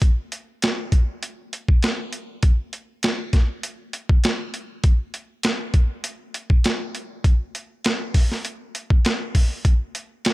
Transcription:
0, 0, Header, 1, 2, 480
1, 0, Start_track
1, 0, Tempo, 601805
1, 12, Time_signature, 4, 2, 24, 8
1, 8242, End_track
2, 0, Start_track
2, 0, Title_t, "Drums"
2, 13, Note_on_c, 9, 36, 102
2, 14, Note_on_c, 9, 42, 84
2, 93, Note_off_c, 9, 36, 0
2, 94, Note_off_c, 9, 42, 0
2, 255, Note_on_c, 9, 42, 60
2, 335, Note_off_c, 9, 42, 0
2, 498, Note_on_c, 9, 42, 90
2, 508, Note_on_c, 9, 38, 114
2, 577, Note_off_c, 9, 42, 0
2, 588, Note_off_c, 9, 38, 0
2, 735, Note_on_c, 9, 36, 77
2, 735, Note_on_c, 9, 42, 60
2, 815, Note_off_c, 9, 36, 0
2, 815, Note_off_c, 9, 42, 0
2, 978, Note_on_c, 9, 42, 80
2, 1058, Note_off_c, 9, 42, 0
2, 1220, Note_on_c, 9, 42, 60
2, 1300, Note_off_c, 9, 42, 0
2, 1344, Note_on_c, 9, 36, 83
2, 1424, Note_off_c, 9, 36, 0
2, 1456, Note_on_c, 9, 42, 76
2, 1466, Note_on_c, 9, 38, 101
2, 1536, Note_off_c, 9, 42, 0
2, 1546, Note_off_c, 9, 38, 0
2, 1695, Note_on_c, 9, 42, 59
2, 1775, Note_off_c, 9, 42, 0
2, 1934, Note_on_c, 9, 42, 82
2, 1938, Note_on_c, 9, 36, 104
2, 2014, Note_off_c, 9, 42, 0
2, 2017, Note_off_c, 9, 36, 0
2, 2176, Note_on_c, 9, 42, 59
2, 2256, Note_off_c, 9, 42, 0
2, 2416, Note_on_c, 9, 42, 79
2, 2426, Note_on_c, 9, 38, 109
2, 2496, Note_off_c, 9, 42, 0
2, 2506, Note_off_c, 9, 38, 0
2, 2657, Note_on_c, 9, 42, 63
2, 2658, Note_on_c, 9, 36, 75
2, 2667, Note_on_c, 9, 38, 35
2, 2736, Note_off_c, 9, 42, 0
2, 2738, Note_off_c, 9, 36, 0
2, 2747, Note_off_c, 9, 38, 0
2, 2899, Note_on_c, 9, 42, 75
2, 2978, Note_off_c, 9, 42, 0
2, 3137, Note_on_c, 9, 42, 60
2, 3217, Note_off_c, 9, 42, 0
2, 3266, Note_on_c, 9, 36, 87
2, 3345, Note_off_c, 9, 36, 0
2, 3379, Note_on_c, 9, 42, 85
2, 3389, Note_on_c, 9, 38, 109
2, 3459, Note_off_c, 9, 42, 0
2, 3469, Note_off_c, 9, 38, 0
2, 3619, Note_on_c, 9, 42, 61
2, 3699, Note_off_c, 9, 42, 0
2, 3857, Note_on_c, 9, 42, 83
2, 3859, Note_on_c, 9, 36, 112
2, 3937, Note_off_c, 9, 42, 0
2, 3938, Note_off_c, 9, 36, 0
2, 4098, Note_on_c, 9, 42, 62
2, 4178, Note_off_c, 9, 42, 0
2, 4334, Note_on_c, 9, 42, 91
2, 4344, Note_on_c, 9, 38, 110
2, 4414, Note_off_c, 9, 42, 0
2, 4424, Note_off_c, 9, 38, 0
2, 4576, Note_on_c, 9, 42, 62
2, 4577, Note_on_c, 9, 36, 75
2, 4656, Note_off_c, 9, 42, 0
2, 4657, Note_off_c, 9, 36, 0
2, 4816, Note_on_c, 9, 42, 83
2, 4896, Note_off_c, 9, 42, 0
2, 5059, Note_on_c, 9, 42, 62
2, 5139, Note_off_c, 9, 42, 0
2, 5184, Note_on_c, 9, 36, 82
2, 5263, Note_off_c, 9, 36, 0
2, 5299, Note_on_c, 9, 42, 86
2, 5309, Note_on_c, 9, 38, 106
2, 5379, Note_off_c, 9, 42, 0
2, 5389, Note_off_c, 9, 38, 0
2, 5540, Note_on_c, 9, 42, 59
2, 5620, Note_off_c, 9, 42, 0
2, 5778, Note_on_c, 9, 36, 100
2, 5780, Note_on_c, 9, 42, 78
2, 5857, Note_off_c, 9, 36, 0
2, 5859, Note_off_c, 9, 42, 0
2, 6021, Note_on_c, 9, 42, 59
2, 6100, Note_off_c, 9, 42, 0
2, 6257, Note_on_c, 9, 42, 81
2, 6267, Note_on_c, 9, 38, 115
2, 6337, Note_off_c, 9, 42, 0
2, 6347, Note_off_c, 9, 38, 0
2, 6496, Note_on_c, 9, 36, 74
2, 6496, Note_on_c, 9, 46, 69
2, 6575, Note_off_c, 9, 36, 0
2, 6576, Note_off_c, 9, 46, 0
2, 6633, Note_on_c, 9, 38, 34
2, 6713, Note_off_c, 9, 38, 0
2, 6737, Note_on_c, 9, 42, 78
2, 6817, Note_off_c, 9, 42, 0
2, 6978, Note_on_c, 9, 42, 58
2, 7058, Note_off_c, 9, 42, 0
2, 7102, Note_on_c, 9, 36, 85
2, 7182, Note_off_c, 9, 36, 0
2, 7216, Note_on_c, 9, 42, 84
2, 7227, Note_on_c, 9, 38, 104
2, 7296, Note_off_c, 9, 42, 0
2, 7307, Note_off_c, 9, 38, 0
2, 7456, Note_on_c, 9, 36, 70
2, 7457, Note_on_c, 9, 46, 76
2, 7535, Note_off_c, 9, 36, 0
2, 7536, Note_off_c, 9, 46, 0
2, 7696, Note_on_c, 9, 36, 109
2, 7696, Note_on_c, 9, 42, 88
2, 7775, Note_off_c, 9, 36, 0
2, 7776, Note_off_c, 9, 42, 0
2, 7935, Note_on_c, 9, 42, 65
2, 8015, Note_off_c, 9, 42, 0
2, 8174, Note_on_c, 9, 42, 86
2, 8185, Note_on_c, 9, 38, 118
2, 8242, Note_off_c, 9, 38, 0
2, 8242, Note_off_c, 9, 42, 0
2, 8242, End_track
0, 0, End_of_file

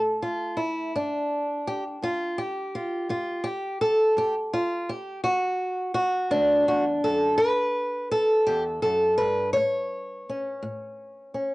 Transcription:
0, 0, Header, 1, 2, 480
1, 0, Start_track
1, 0, Key_signature, 2, "major"
1, 0, Tempo, 716846
1, 631, Time_signature, 12, 3, 24, 8
1, 7731, End_track
2, 0, Start_track
2, 0, Title_t, "Steel-string acoustic guitar"
2, 0, Program_c, 0, 25
2, 0, Note_on_c, 0, 45, 72
2, 0, Note_on_c, 0, 57, 43
2, 0, Note_on_c, 0, 61, 46
2, 148, Note_off_c, 0, 61, 0
2, 151, Note_on_c, 0, 65, 80
2, 342, Note_off_c, 0, 45, 0
2, 380, Note_on_c, 0, 64, 81
2, 391, Note_off_c, 0, 65, 0
2, 607, Note_off_c, 0, 57, 0
2, 626, Note_off_c, 0, 64, 0
2, 639, Note_on_c, 0, 62, 82
2, 644, Note_on_c, 0, 43, 73
2, 1069, Note_off_c, 0, 43, 0
2, 1121, Note_on_c, 0, 67, 89
2, 1228, Note_off_c, 0, 67, 0
2, 1355, Note_off_c, 0, 62, 0
2, 1355, Note_on_c, 0, 43, 65
2, 1362, Note_on_c, 0, 65, 91
2, 1594, Note_on_c, 0, 67, 82
2, 1596, Note_off_c, 0, 65, 0
2, 1785, Note_off_c, 0, 43, 0
2, 1840, Note_on_c, 0, 65, 76
2, 2065, Note_off_c, 0, 65, 0
2, 2071, Note_on_c, 0, 43, 72
2, 2075, Note_on_c, 0, 65, 82
2, 2293, Note_off_c, 0, 67, 0
2, 2301, Note_on_c, 0, 67, 88
2, 2312, Note_off_c, 0, 65, 0
2, 2503, Note_off_c, 0, 43, 0
2, 2546, Note_off_c, 0, 67, 0
2, 2552, Note_on_c, 0, 69, 99
2, 2791, Note_off_c, 0, 69, 0
2, 2791, Note_on_c, 0, 43, 78
2, 2799, Note_on_c, 0, 67, 98
2, 2906, Note_off_c, 0, 67, 0
2, 3037, Note_on_c, 0, 65, 90
2, 3223, Note_off_c, 0, 43, 0
2, 3274, Note_off_c, 0, 65, 0
2, 3277, Note_on_c, 0, 67, 88
2, 3503, Note_off_c, 0, 67, 0
2, 3506, Note_on_c, 0, 66, 100
2, 3510, Note_on_c, 0, 38, 75
2, 3942, Note_off_c, 0, 38, 0
2, 3971, Note_off_c, 0, 66, 0
2, 3979, Note_on_c, 0, 66, 94
2, 4222, Note_on_c, 0, 38, 63
2, 4225, Note_on_c, 0, 62, 94
2, 4464, Note_off_c, 0, 66, 0
2, 4466, Note_off_c, 0, 38, 0
2, 4472, Note_on_c, 0, 40, 62
2, 4474, Note_on_c, 0, 66, 86
2, 4579, Note_off_c, 0, 66, 0
2, 4711, Note_off_c, 0, 40, 0
2, 4714, Note_on_c, 0, 69, 94
2, 4717, Note_on_c, 0, 42, 62
2, 4937, Note_off_c, 0, 69, 0
2, 4939, Note_on_c, 0, 71, 104
2, 4946, Note_off_c, 0, 62, 0
2, 4953, Note_off_c, 0, 42, 0
2, 4959, Note_on_c, 0, 43, 66
2, 5386, Note_off_c, 0, 43, 0
2, 5424, Note_off_c, 0, 71, 0
2, 5434, Note_on_c, 0, 69, 106
2, 5669, Note_on_c, 0, 67, 102
2, 5679, Note_on_c, 0, 40, 60
2, 5776, Note_off_c, 0, 67, 0
2, 5900, Note_off_c, 0, 69, 0
2, 5908, Note_on_c, 0, 69, 92
2, 5914, Note_off_c, 0, 40, 0
2, 5919, Note_on_c, 0, 42, 64
2, 6142, Note_off_c, 0, 69, 0
2, 6144, Note_on_c, 0, 71, 96
2, 6154, Note_off_c, 0, 42, 0
2, 6165, Note_on_c, 0, 43, 66
2, 6378, Note_off_c, 0, 71, 0
2, 6380, Note_on_c, 0, 73, 100
2, 6397, Note_off_c, 0, 43, 0
2, 6403, Note_on_c, 0, 45, 72
2, 6828, Note_off_c, 0, 45, 0
2, 6893, Note_on_c, 0, 61, 49
2, 7114, Note_on_c, 0, 45, 68
2, 7544, Note_off_c, 0, 45, 0
2, 7587, Note_off_c, 0, 61, 0
2, 7595, Note_on_c, 0, 61, 44
2, 7731, Note_off_c, 0, 61, 0
2, 7731, Note_off_c, 0, 73, 0
2, 7731, End_track
0, 0, End_of_file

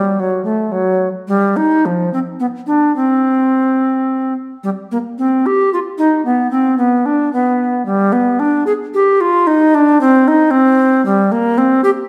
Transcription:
0, 0, Header, 1, 2, 480
1, 0, Start_track
1, 0, Key_signature, -3, "minor"
1, 0, Tempo, 551471
1, 1127, Time_signature, 3, 2, 24, 8
1, 4502, Tempo, 536673
1, 8342, Tempo, 527241
1, 10728, End_track
2, 0, Start_track
2, 0, Title_t, "Recorder"
2, 0, Program_c, 0, 74
2, 0, Note_on_c, 0, 55, 74
2, 171, Note_on_c, 0, 54, 77
2, 184, Note_off_c, 0, 55, 0
2, 384, Note_off_c, 0, 54, 0
2, 389, Note_on_c, 0, 57, 74
2, 626, Note_on_c, 0, 54, 74
2, 639, Note_off_c, 0, 57, 0
2, 946, Note_off_c, 0, 54, 0
2, 1112, Note_on_c, 0, 55, 76
2, 1361, Note_on_c, 0, 63, 65
2, 1374, Note_off_c, 0, 55, 0
2, 1614, Note_on_c, 0, 53, 67
2, 1627, Note_off_c, 0, 63, 0
2, 1848, Note_off_c, 0, 53, 0
2, 1855, Note_on_c, 0, 60, 62
2, 1908, Note_off_c, 0, 60, 0
2, 2086, Note_on_c, 0, 59, 61
2, 2140, Note_off_c, 0, 59, 0
2, 2320, Note_on_c, 0, 62, 66
2, 2560, Note_off_c, 0, 62, 0
2, 2576, Note_on_c, 0, 60, 72
2, 3770, Note_off_c, 0, 60, 0
2, 4033, Note_on_c, 0, 55, 73
2, 4086, Note_off_c, 0, 55, 0
2, 4277, Note_on_c, 0, 58, 68
2, 4329, Note_off_c, 0, 58, 0
2, 4510, Note_on_c, 0, 60, 61
2, 4760, Note_on_c, 0, 67, 72
2, 4773, Note_off_c, 0, 60, 0
2, 4990, Note_off_c, 0, 67, 0
2, 5003, Note_on_c, 0, 65, 66
2, 5057, Note_off_c, 0, 65, 0
2, 5224, Note_on_c, 0, 63, 79
2, 5455, Note_off_c, 0, 63, 0
2, 5468, Note_on_c, 0, 59, 70
2, 5692, Note_off_c, 0, 59, 0
2, 5697, Note_on_c, 0, 60, 80
2, 5933, Note_off_c, 0, 60, 0
2, 5937, Note_on_c, 0, 59, 71
2, 6186, Note_on_c, 0, 62, 74
2, 6200, Note_off_c, 0, 59, 0
2, 6423, Note_off_c, 0, 62, 0
2, 6433, Note_on_c, 0, 59, 74
2, 6897, Note_off_c, 0, 59, 0
2, 6902, Note_on_c, 0, 55, 82
2, 7142, Note_on_c, 0, 59, 77
2, 7155, Note_off_c, 0, 55, 0
2, 7383, Note_on_c, 0, 62, 82
2, 7397, Note_off_c, 0, 59, 0
2, 7618, Note_off_c, 0, 62, 0
2, 7624, Note_on_c, 0, 68, 84
2, 7678, Note_off_c, 0, 68, 0
2, 7872, Note_on_c, 0, 67, 74
2, 8110, Note_on_c, 0, 65, 90
2, 8123, Note_off_c, 0, 67, 0
2, 8345, Note_on_c, 0, 63, 92
2, 8359, Note_off_c, 0, 65, 0
2, 8596, Note_on_c, 0, 62, 88
2, 8610, Note_off_c, 0, 63, 0
2, 8832, Note_off_c, 0, 62, 0
2, 8836, Note_on_c, 0, 60, 97
2, 9080, Note_on_c, 0, 63, 91
2, 9093, Note_off_c, 0, 60, 0
2, 9289, Note_on_c, 0, 60, 97
2, 9303, Note_off_c, 0, 63, 0
2, 9777, Note_off_c, 0, 60, 0
2, 9788, Note_on_c, 0, 55, 101
2, 10028, Note_on_c, 0, 58, 99
2, 10041, Note_off_c, 0, 55, 0
2, 10265, Note_on_c, 0, 60, 87
2, 10278, Note_off_c, 0, 58, 0
2, 10495, Note_off_c, 0, 60, 0
2, 10501, Note_on_c, 0, 67, 96
2, 10556, Note_off_c, 0, 67, 0
2, 10728, End_track
0, 0, End_of_file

